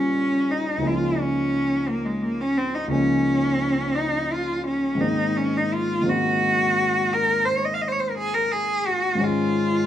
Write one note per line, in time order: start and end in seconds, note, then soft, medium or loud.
0.00 0.79 A#2 soft
0.00 0.80 G3 soft
0.00 0.80 A#3 soft
0.00 0.53 C#4 medium
0.00 0.81 C#4 soft
0.00 0.82 F4 soft
0.51 0.88 D#4 medium
0.78 2.86 C#2 soft
0.78 2.87 F3 soft
0.78 2.89 A#3 soft
0.83 2.90 C#4 soft
0.83 2.91 D#4 soft
0.87 1.21 F4 medium
1.20 1.91 C#4 medium
1.89 2.07 A#3 medium
2.05 2.24 G#3 medium
2.22 2.42 A#3 medium
2.41 2.59 C#4 medium
2.57 2.77 C4 medium
2.75 2.91 D#4 medium
2.88 4.96 C#2 medium
2.88 4.97 F3 soft
2.88 4.97 A#3 soft
2.92 3.97 C#4 medium
2.92 4.98 C#4 soft
2.92 4.99 D#4 soft
3.95 4.34 D#4 medium
4.33 4.67 F4 medium
4.67 5.02 C#4 medium
4.95 6.00 G#2 medium
4.95 6.01 D#3 soft
4.95 6.03 A#3 soft
5.00 6.04 C4 soft
5.00 5.39 D#4 medium
5.00 6.05 D#4 soft
5.37 5.58 C#4 medium
5.57 5.75 D#4 medium
5.74 6.11 F4 medium
6.01 9.14 G#2 soft
6.01 9.15 D#3 soft
6.01 9.16 A#3 soft
6.07 9.17 C4 soft
6.07 9.18 D#4 soft
6.07 7.15 F#4 medium
7.14 7.47 A#4 medium
7.45 7.59 C5 medium
7.58 7.66 C#5 medium
7.65 7.75 D#5 medium
7.74 7.83 F5 medium
7.81 7.90 D#5 medium
7.88 7.94 C5 medium
7.92 8.01 C#5 medium
8.00 8.11 C5 medium
8.10 8.17 A#4 medium
8.18 8.36 G#4 medium
8.34 8.53 A#4 medium
8.52 8.88 G#4 medium
8.87 9.25 F#4 medium
9.15 9.86 G#2 soft
9.15 9.86 D#3 soft
9.15 9.86 G#3 soft
9.20 9.86 C#4 soft
9.20 9.86 D#4 soft
9.20 9.86 F4 medium